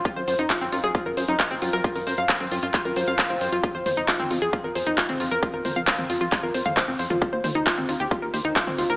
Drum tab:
HH |x-oxx-oxx-oxx-ox|xooxx-oxx-oxx-ox|x-oxx-oxx-oxx-ox|x-oxx-oxx-oxx-ox|
CP |----x-------x---|----x---x---x---|----x-------x---|----x---x---x---|
T2 |----------------|----------------|--o--o-------o--|--o--o-----o---o|
BD |o---o---o---o---|o---o---o---o---|o---o---o---o---|o---o---o---o---|

HH |x-oxx-oxx-oxx-ox|
CP |----x-------x---|
T2 |--o--o-------o--|
BD |o---o---o---o---|